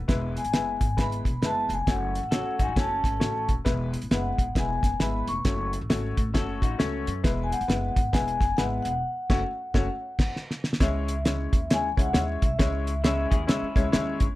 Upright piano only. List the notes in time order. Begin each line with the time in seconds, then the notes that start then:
0.08 G#3 B3 E4 B4
0.53 G#3 B3 E4 B4
0.97 G#3 B3 E4 B4
1.43 G#3 B3 E4 B4
1.88 A3 C#4 F#4 C#5
2.32 A3 C#4 F#4 C#5
2.77 A3 C#4 F#4 C#5
3.20 A3 C#4 F#4 C#5
3.64 G#3 B3 E4 B4
4.11 G#3 B3 E4 B4
4.55 G#3 B3 E4 B4
5.00 G#3 B3 E4 B4
5.45 A3 C#4 F#4 C#5
5.89 A3 C#4 F#4 C#5
6.34 A3 C#4 F#4 C#5
6.78 A3 C#4 F#4 C#5
7.24 G#3 B3 E4 B4
7.68 G#3 B3 E4 B4
8.13 G#3 B3 E4 B4
8.58 G#3 B3 E4 B4
9.30 A3 C#4 F#4 C#5
9.75 A3 C#4 F#4 C#5
10.80 G#3 C#4 E4 C#5
11.25 G#3 C#4 E4 C#5
11.70 G#3 C#4 E4 C#5
11.97 G#3 C#4 E4 C#5
12.13 G#3 C#4 E4 C#5
12.59 G#3 C#4 E4 C#5
13.04 G#3 C#4 E4 C#5
13.47 G#3 C#4 E4 C#5
13.76 G#3 C#4 E4 C#5
13.92 G#3 C#4 E4 C#5